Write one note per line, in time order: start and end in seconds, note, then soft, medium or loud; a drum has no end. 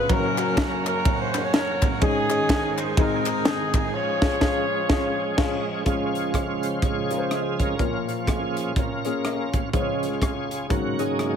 0.09 1.98 F#1 medium
0.09 1.98 F#2 medium
0.09 2.00 F#3 medium
0.09 2.00 A#3 medium
0.09 0.24 C#4 medium
0.09 2.95 C#4 medium
0.09 0.86 C#4 medium
0.09 0.86 F#4 medium
0.09 0.24 F#4 medium
0.09 2.00 A#4 medium
0.09 0.58 A#4 loud
0.09 0.25 A#4 medium
0.09 kick loud
0.09 ride bell medium
0.37 0.87 C#4 medium
0.37 0.88 F#4 medium
0.37 0.88 A#4 medium
0.37 clap loud
0.37 ride bell medium
0.57 0.85 A#4 loud
0.57 kick medium
0.57 snare loud
0.57 ride bell medium
0.86 1.78 C#4 medium
0.86 1.53 F#4 medium
0.86 1.18 A#4 loud
0.86 clap loud
0.86 ride bell medium
1.05 kick loud
1.05 ride bell medium
1.21 1.44 C5 loud
1.34 snare soft
1.34 clap medium
1.34 ride bell medium
1.45 1.54 C#5 medium
1.54 1.99 F#4 medium
1.54 1.99 A#4 medium
1.54 1.90 C#5 loud
1.54 snare loud
1.54 ride bell medium
1.82 kick loud
1.82 clap loud
1.82 ride bell medium
2.01 2.94 G#1 medium
2.01 2.94 G#2 medium
2.01 3.92 D#3 medium
2.01 5.83 G#3 medium
2.01 2.16 C#4 medium
2.01 2.94 C#4 medium
2.01 2.16 D#4 medium
2.01 2.94 D#4 medium
2.01 3.92 G#4 medium
2.01 2.17 G#4 medium
2.01 2.75 G#4 loud
2.01 kick loud
2.01 ride bell medium
2.30 2.80 C#4 medium
2.30 2.80 D#4 medium
2.30 2.80 G#4 medium
2.30 clap loud
2.30 ride bell medium
2.49 kick medium
2.49 snare loud
2.49 ride bell medium
2.78 2.98 C5 medium
2.78 clap medium
2.78 ride bell medium
2.97 3.90 G#1 medium
2.97 3.90 G#2 medium
2.97 3.78 C4 medium
2.97 3.93 C4 medium
2.97 3.78 D#4 medium
2.97 3.91 D#4 medium
2.97 3.78 G#4 medium
2.97 3.47 A#4 medium
2.97 kick loud
2.97 ride bell medium
3.25 clap medium
3.25 ride bell medium
3.45 3.75 G#4 medium
3.45 snare loud
3.45 ride bell medium
3.74 3.94 G#4 medium
3.74 kick loud
3.74 clap loud
3.74 ride bell medium
3.93 5.84 F3 medium
3.93 5.84 C#4 medium
3.93 5.63 F4 medium
3.93 5.84 G#4 medium
3.93 5.63 G#4 medium
3.93 5.67 C#5 loud
4.22 4.35 C#4 medium
4.22 4.35 F4 medium
4.22 4.36 G#4 medium
4.22 kick loud
4.22 snare medium
4.22 crash medium
4.41 4.61 C#4 loud
4.41 4.61 F4 loud
4.41 4.61 G#4 medium
4.41 kick loud
4.41 snare loud
4.89 5.09 C#4 loud
4.89 5.09 F4 medium
4.89 5.10 G#4 medium
4.89 kick loud
4.89 snare loud
5.37 5.57 C#4 loud
5.37 5.57 F4 loud
5.37 5.58 G#4 loud
5.37 kick loud
5.37 snare loud
5.37 crash medium
5.85 7.75 C#2 medium
5.85 7.75 C#3 medium
5.85 7.75 F3 soft
5.85 6.37 G#3 medium
5.85 7.76 G#3 medium
5.85 6.37 C#4 medium
5.85 6.79 C#4 medium
5.85 6.37 F4 medium
5.85 6.79 F4 medium
5.85 6.31 G#4 medium
5.85 6.37 C#5 medium
5.85 kick medium
5.85 closed hi-hat medium
6.15 closed hi-hat medium
6.34 kick medium
6.34 cross-stick medium
6.34 closed hi-hat medium
6.62 6.83 C5 medium
6.62 closed hi-hat medium
6.82 7.58 F4 medium
6.82 7.76 G#4 medium
6.82 7.27 C#5 medium
6.82 kick loud
6.82 closed hi-hat medium
7.11 7.47 G#3 medium
7.11 7.47 C#4 medium
7.11 7.48 F4 medium
7.11 7.16 A#4 medium
7.11 cross-stick soft
7.11 closed hi-hat medium
7.18 7.51 C5 medium
7.31 cross-stick loud
7.31 closed hi-hat medium
7.59 8.07 C#4 medium
7.59 8.27 F4 medium
7.59 8.04 A#4 loud
7.59 kick medium
7.59 closed hi-hat medium
7.79 9.70 A#1 medium
7.79 9.69 A#2 soft
7.79 8.30 A#3 medium
7.79 8.31 C#4 medium
7.79 8.31 F4 medium
7.79 8.31 C#5 medium
7.79 kick medium
7.79 closed hi-hat medium
8.08 8.73 A#2 soft
8.08 8.73 F3 soft
8.08 8.27 C#4 medium
8.08 closed hi-hat medium
8.27 8.75 C#4 medium
8.27 8.75 F4 medium
8.27 8.73 G#4 medium
8.27 kick medium
8.27 cross-stick medium
8.27 closed hi-hat medium
8.57 closed hi-hat medium
8.76 9.70 C#4 medium
8.76 9.69 F4 medium
8.76 9.50 A#4 medium
8.76 kick loud
8.76 closed hi-hat medium
9.05 9.41 A#3 medium
9.05 9.41 C#4 medium
9.05 9.42 F4 medium
9.05 9.42 G#4 medium
9.05 cross-stick soft
9.05 closed hi-hat medium
9.25 cross-stick medium
9.25 closed hi-hat medium
9.53 kick medium
9.53 closed hi-hat medium
9.73 10.67 C#2 medium
9.73 10.08 C#3 soft
9.73 10.67 C#3 medium
9.73 10.08 F3 soft
9.73 10.24 G#3 medium
9.73 10.08 G#3 medium
9.73 10.25 C#4 medium
9.73 10.67 C#4 medium
9.73 10.67 F4 medium
9.73 10.25 F4 medium
9.73 10.21 G#4 medium
9.73 9.81 C5 medium
9.73 kick loud
9.73 closed hi-hat medium
9.80 10.28 C#5 medium
10.03 closed hi-hat medium
10.12 cross-stick soft
10.22 10.49 G#4 medium
10.22 kick medium
10.22 cross-stick medium
10.22 closed hi-hat medium
10.51 10.71 G#4 medium
10.51 closed hi-hat medium
10.69 11.36 G#1 medium
10.69 11.36 G#2 soft
10.69 11.36 G#2 medium
10.69 11.36 C#3 soft
10.69 11.36 F#3 soft
10.69 10.93 G#3 medium
10.69 11.36 A#3 medium
10.69 10.93 C#4 medium
10.69 10.98 C#4 medium
10.69 10.93 F#4 medium
10.69 11.00 F#4 medium
10.69 10.94 A#4 medium
10.69 kick loud
10.69 closed hi-hat medium
10.99 11.35 G#3 medium
10.99 11.35 C#4 medium
10.99 11.36 C#4 medium
10.99 11.36 D#4 medium
10.99 11.35 F#4 medium
10.99 11.36 G#4 medium
10.99 closed hi-hat medium
11.19 cross-stick medium
11.19 closed hi-hat medium